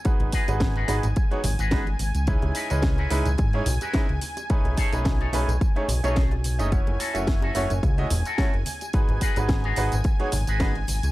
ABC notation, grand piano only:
X:1
M:4/4
L:1/16
Q:"Swing 16ths" 1/4=108
K:G#phr
V:1 name="Grand piano"
[G,B,DFB]3 [G,B,DFB]3 [G,B,DFB] z2 [G,B,DFc] z2 [G,B,DFB] z3 | [G,CDEB]3 [E,G,CBd]3 [G,CDEB] z2 [G,CDEc] z2 [G,CDEB] z3 | [A,CDGB]3 [A,CDBg]3 [A,CDGB] z2 [A,CDGc] z [A,CDGc] z3 [A,CDGd] | [A,CEFc]3 [A,CEFc]3 [A,CEFc] z2 [A,CEFd] z2 [A,CEFc] z3 |
[G,B,DFB]3 [G,B,DFB]3 [G,B,DFB] z2 [G,B,DFc] z2 [G,B,DFB] z3 |]